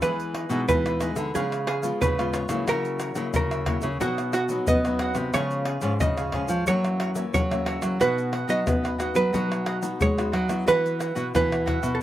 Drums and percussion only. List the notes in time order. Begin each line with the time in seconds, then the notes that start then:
0.02 pandeiro, tamborim, shaker, surdo
0.20 pandeiro, shaker
0.35 pandeiro, tamborim
0.50 pandeiro, shaker
0.69 pandeiro, tamborim, shaker, surdo
0.86 pandeiro, tamborim, shaker
1.01 pandeiro, tamborim, shaker
1.16 pandeiro, shaker
1.35 pandeiro, shaker, surdo
1.52 pandeiro, tamborim, shaker
1.67 pandeiro, tamborim
1.83 pandeiro, shaker
2.02 pandeiro, shaker, surdo
2.19 pandeiro, tamborim, shaker
2.34 pandeiro, tamborim, shaker
2.49 pandeiro, tamborim, shaker
2.68 pandeiro, tamborim, shaker, surdo
2.85 pandeiro, shaker
3.00 pandeiro, tamborim, shaker
3.15 pandeiro, shaker
3.34 pandeiro, tamborim, shaker, surdo
3.51 pandeiro, tamborim, shaker
3.66 pandeiro, tamborim, surdo
3.82 pandeiro, shaker
4.01 pandeiro, shaker, surdo
4.18 pandeiro, tamborim, shaker
4.33 pandeiro, tamborim, shaker
4.49 pandeiro, shaker
4.67 pandeiro, shaker, surdo
4.85 pandeiro, tamborim, shaker
4.99 pandeiro, tamborim
5.15 pandeiro, tamborim, shaker
5.34 pandeiro, tamborim, shaker, surdo
5.51 pandeiro, shaker
5.65 pandeiro, tamborim
5.81 pandeiro, shaker
6.00 pandeiro, tamborim, shaker, surdo
6.17 pandeiro, tamborim, shaker
6.32 pandeiro, tamborim, surdo
6.48 pandeiro, shaker
6.67 pandeiro, shaker, surdo
6.84 pandeiro, tamborim, shaker
7.00 pandeiro, tamborim
7.15 pandeiro, shaker
7.34 pandeiro, shaker, surdo
7.51 pandeiro, tamborim, shaker
7.66 pandeiro, tamborim
7.82 pandeiro, tamborim, shaker
8.01 pandeiro, tamborim, shaker, surdo
8.18 pandeiro, shaker
8.33 pandeiro, tamborim
8.49 pandeiro, shaker
8.67 pandeiro, tamborim, shaker, surdo
8.85 pandeiro, tamborim, shaker
9.00 pandeiro, tamborim, shaker
9.15 pandeiro, shaker
9.34 pandeiro, shaker, surdo
9.52 pandeiro, tamborim, shaker
9.66 pandeiro, tamborim
9.83 pandeiro, shaker
10.01 pandeiro, shaker, surdo
10.19 pandeiro, tamborim, shaker
10.33 pandeiro, tamborim
10.49 pandeiro, tamborim, shaker
10.68 pandeiro, tamborim, shaker, surdo
10.86 pandeiro, shaker
11.00 pandeiro, tamborim, shaker
11.16 pandeiro, shaker
11.35 pandeiro, tamborim, shaker, surdo
11.52 pandeiro, tamborim, shaker
11.67 pandeiro, tamborim, surdo
11.83 pandeiro, shaker